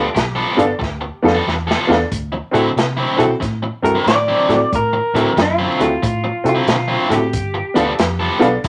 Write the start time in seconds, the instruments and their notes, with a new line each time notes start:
Already playing: clean electric guitar G4
0.14 fingered electric bass B1, muted overdriven electric guitar stroke, kick, snare, closed hi-hat
0.35 overdriven electric guitar G3 B3 F4 A4
0.57 fingered electric bass G1, honky-tonk piano B3 D4 F4 A4, closed hi-hat
0.79 fingered electric bass D2, muted overdriven electric guitar stroke, kick, snare
1.01 muted overdriven electric guitar stroke
1.23 fingered electric bass F2, honky-tonk piano B3 D4 F4 A4
1.27 snare
1.35 overdriven electric guitar G3 B3 F4 A4
1.47 fingered electric bass E2, snare
1.67 overdriven electric guitar G3 B3 F4 A4, snare
1.87 fingered electric bass E2, honky-tonk piano B3 D4 F4 A4
1.92 snare
2.12 fingered electric bass D2, kick, closed hi-hat
2.32 muted overdriven electric guitar stroke
2.51 fingered electric bass A2, overdriven electric guitar D3 F#3 C4 E4, honky-tonk piano C4 E4 F#4 A4, closed hi-hat
2.76 fingered electric bass C3, muted overdriven electric guitar stroke, snare, closed hi-hat
2.97 overdriven electric guitar D3 F#3 C4 E4
3.17 fingered electric bass B2, honky-tonk piano C4 E4 F#4 A4, closed hi-hat
3.40 fingered electric bass A2, muted overdriven electric guitar stroke, kick, snare, closed hi-hat
3.63 muted overdriven electric guitar stroke
3.82 fingered electric bass G2, honky-tonk piano C4 E4 F#4 A4, clean electric guitar A#4, closed hi-hat
3.95 overdriven electric guitar D3 F#3 C4 E4
4.06 fingered electric bass A2, clean electric guitar D5, snare, closed hi-hat
4.28 overdriven electric guitar D3 F#3 C4 E4
4.48 fingered electric bass A2, honky-tonk piano C4 E4 F#4 A4, snare, closed hi-hat
4.72 fingered electric bass A2, clean electric guitar A#4, kick, closed hi-hat
4.93 muted overdriven electric guitar stroke
5.14 fingered electric bass A2, overdriven electric guitar D3 F#3 C4 E4, honky-tonk piano C4 E4 F#4 A4, closed hi-hat
5.36 fingered electric bass F#2, muted overdriven electric guitar stroke, snare, closed hi-hat
5.42 clean electric guitar F4
5.58 overdriven electric guitar D3 F#3 C4 E4
5.79 fingered electric bass D2, honky-tonk piano C4 E4 F#4 A4, clean electric guitar F4, closed hi-hat
6.02 fingered electric bass A2, muted overdriven electric guitar stroke, kick, closed hi-hat
6.24 muted overdriven electric guitar stroke
6.44 fingered electric bass C3, honky-tonk piano C4 E4 F#4 A4, closed hi-hat
6.49 clean electric guitar F4
6.55 overdriven electric guitar D3 F#3 C4 E4
6.67 fingered electric bass B2, snare, closed hi-hat
6.88 overdriven electric guitar D3 F#3 C4 E4
7.09 fingered electric bass A2, honky-tonk piano C4 E4 F#4 A4, snare, closed hi-hat
7.13 clean electric guitar G4
7.33 fingered electric bass G1, kick, closed hi-hat
7.54 muted overdriven electric guitar stroke
7.74 fingered electric bass D2, overdriven electric guitar G3 B3 F4 A4, honky-tonk piano B3 D4 F4 A4, closed hi-hat
7.99 fingered electric bass F2, muted overdriven electric guitar stroke, snare, closed hi-hat
8.20 overdriven electric guitar G3 B3 F4 A4
8.39 fingered electric bass B1, honky-tonk piano B3 D4 F4 A4, closed hi-hat
8.64 fingered electric bass C2, muted overdriven electric guitar stroke, kick, closed hi-hat